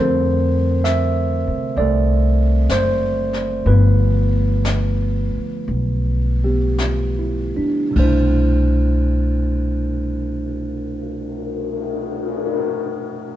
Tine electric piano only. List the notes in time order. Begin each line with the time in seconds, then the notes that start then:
Already playing: D3 G3 A4 A#4 C5
0.00 A3 C4
0.84 E5
1.77 G3 A3 A4 D5
2.71 C5
3.65 D3 F3 A3 B4
3.69 B3 F4
6.44 G3 B3 G4
6.80 F4
7.19 E4
7.57 D4
7.91 C3 G3
7.96 B2 A3 C5
8.01 D4 E4